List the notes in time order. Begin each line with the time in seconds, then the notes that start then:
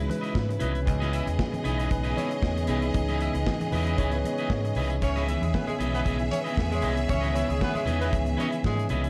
Already playing: C#3 E3 G#3 B3 C#4 D#4 E4 F#4 G#4 B4
0.08 B4, muted clean electric guitar stroke, closed hi-hat, high conga
0.21 E4 B4 D#5, closed hi-hat
0.35 G#2, kick, snare, muted conga, high conga
0.49 muted clean electric guitar stroke, closed hi-hat, muted conga
0.60 C2 E4 B4 D#5, closed hi-hat, low conga
0.74 muted clean electric guitar stroke, closed hi-hat
0.86 C#2 B3 G#4 D#5, muted clean electric guitar stroke, kick, closed hi-hat, low conga
0.99 E4 B4 D#5, snare, closed hi-hat, muted conga
1.12 E4 B4 E5, closed hi-hat
1.26 E2, muted clean electric guitar stroke, closed hi-hat, high conga
1.39 muted clean electric guitar stroke, kick, snare, muted conga, high conga
1.52 muted clean electric guitar stroke, closed hi-hat, muted conga, high conga
1.64 B1 E3 B3 D#4 E4 B4 D#5, closed hi-hat, low conga
1.78 E4 B4 D#5, closed hi-hat
1.90 B1 B4, muted clean electric guitar stroke, kick, closed hi-hat, muted conga
2.03 E4 B4 D#5, closed hi-hat, muted conga
2.16 E4 B4 C#5 D#5, closed hi-hat, high conga
2.31 muted clean electric guitar stroke, closed hi-hat
2.43 E2, kick, snare, high conga
2.57 muted clean electric guitar stroke, closed hi-hat
2.67 C2 E3 B3 D#4 E4 G#4 B4 D#5, closed hi-hat, low conga
2.82 muted clean electric guitar stroke, closed hi-hat
2.94 C#2 E3 B3 D#4, muted clean electric guitar stroke, kick, closed hi-hat, muted conga, low conga
3.06 B4 D#5, snare, closed hi-hat, muted conga
3.10 E4
3.21 E4 B4 E5, closed hi-hat
3.33 C#2, muted clean electric guitar stroke, closed hi-hat, high conga
3.46 muted clean electric guitar stroke, kick, snare, muted conga, high conga
3.61 muted clean electric guitar stroke, closed hi-hat, muted conga, high conga
3.72 E2 E4 B4 D#5, open hi-hat, low conga
3.86 E4 B4 D#5, closed hi-hat
3.98 C#2 E4 B4 C#5 D#5, kick, closed hi-hat, muted conga
4.12 B4, muted clean electric guitar stroke, closed hi-hat
4.24 muted clean electric guitar stroke, closed hi-hat, high conga
4.33 C#5
4.38 E4 B4 D#5, closed hi-hat
4.50 G#2 C#5, kick, snare, muted conga, high conga
4.65 muted clean electric guitar stroke, closed hi-hat
4.75 C2 E4 B4 D#5, open hi-hat, low conga
4.90 muted clean electric guitar stroke, closed hi-hat
5.02 C#2 B3 C#4 G#4 C#5 E5, muted clean electric guitar stroke, kick, closed hi-hat, muted conga, low conga
5.16 E4 B4 D#5, snare, closed hi-hat
5.28 D#3 E3 B3 E4 B4 E5, closed hi-hat
5.41 E2 G#3 G#4, muted clean electric guitar stroke, closed hi-hat, high conga
5.54 B3 B4, muted clean electric guitar stroke, kick, snare, high conga
5.67 G#3 G#4, muted clean electric guitar stroke, closed hi-hat, muted conga, high conga
5.79 B1 E4 B4 D#5, closed hi-hat, low conga
5.93 B3 E4 B4 D#5, closed hi-hat
6.05 B1 E4 G#4 B4 D#5, kick, closed hi-hat, muted conga
6.19 muted clean electric guitar stroke, closed hi-hat
6.31 C#4 C#5, muted clean electric guitar stroke, closed hi-hat, high conga
6.41 B4 D#5
6.46 E4, closed hi-hat
6.57 E2, kick, snare, muted conga, high conga
6.70 G#3 G#4, muted clean electric guitar stroke, closed hi-hat, muted conga
6.75 C#5
6.82 C2 E4 B4 D#5, closed hi-hat, low conga
6.96 muted clean electric guitar stroke, closed hi-hat
7.08 C#2 D#3 E3 B3 C#4 C#5 E5, muted clean electric guitar stroke, kick, closed hi-hat, muted conga, low conga
7.21 E4 B4 D#5, closed hi-hat, muted conga
7.34 E4 B4 C#5 E5, closed hi-hat
7.48 C#2 G#3 G#4, muted clean electric guitar stroke, closed hi-hat, high conga
7.60 B3 B4, muted clean electric guitar stroke, kick, snare, high conga
7.74 G#3 G#4, muted clean electric guitar stroke, closed hi-hat, muted conga, high conga
7.85 E2 E3 B3 D#4 E4 B4 D#5, closed hi-hat, low conga
7.99 B3 E4 B4 D#5, closed hi-hat
8.13 C#2, kick, closed hi-hat
8.25 muted clean electric guitar stroke, closed hi-hat
8.37 C#4 E4 B4 C#5 D#5, closed hi-hat, high conga
8.52 muted clean electric guitar stroke, closed hi-hat
8.64 G#2 G#3 G#4, kick, snare, high conga
8.77 muted clean electric guitar stroke, closed hi-hat, muted conga
8.89 C2 E4 B4 D#5, closed hi-hat, low conga
9.04 muted clean electric guitar stroke, closed hi-hat